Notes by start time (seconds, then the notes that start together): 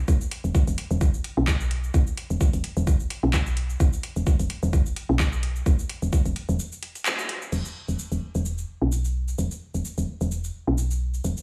0.08 E1, kick, cabasa
0.21 cabasa
0.31 closed hi-hat
0.44 E1, cabasa
0.55 kick, cabasa
0.67 E1, closed hi-hat, cabasa
0.78 closed hi-hat
0.91 E1, cabasa
1.01 kick, cabasa
1.14 cabasa
1.24 closed hi-hat
1.37 B1
1.48 kick, clap, cabasa
1.60 cabasa
1.71 closed hi-hat
1.84 cabasa
1.94 E1, kick, cabasa
2.07 cabasa
2.17 closed hi-hat
2.30 E1, cabasa
2.41 kick, cabasa
2.53 E1, closed hi-hat, cabasa
2.64 closed hi-hat
2.77 E1, cabasa
2.87 kick, cabasa
3.00 cabasa
3.10 closed hi-hat
3.23 B1
3.34 kick, clap, cabasa
3.46 cabasa
3.57 closed hi-hat
3.70 cabasa
3.80 E1, kick, cabasa
3.93 cabasa
4.03 closed hi-hat
4.16 E1, cabasa
4.27 kick, cabasa
4.39 E1, closed hi-hat, cabasa
4.50 closed hi-hat
4.63 E1, cabasa
4.73 kick, cabasa
4.86 cabasa
4.96 closed hi-hat
5.09 B1
5.20 kick, clap, cabasa
5.33 cabasa
5.43 closed hi-hat
5.56 cabasa
5.66 E1, kick, cabasa
5.79 cabasa
5.89 closed hi-hat
6.02 E1, cabasa
6.13 kick, cabasa
6.25 E1, closed hi-hat, cabasa
6.36 closed hi-hat
6.49 E1, cabasa
6.59 cabasa
6.72 cabasa
6.83 closed hi-hat
6.95 closed hi-hat, cabasa
7.06 clap, cabasa
7.19 cabasa
7.29 closed hi-hat
7.42 cabasa
7.52 E1, crash, cabasa
7.65 cabasa
7.88 E1, cabasa
7.99 cabasa
8.12 E1, cabasa
8.35 E1, cabasa
8.45 cabasa
8.58 cabasa
8.82 B1
8.92 cabasa
9.05 cabasa
9.28 cabasa
9.38 E1, cabasa
9.51 cabasa
9.74 E1, cabasa
9.85 cabasa
9.98 E1, cabasa
10.21 E1, cabasa
10.31 cabasa
10.44 cabasa
10.67 B1
10.78 cabasa
10.91 cabasa
11.14 cabasa
11.24 E1, cabasa
11.37 cabasa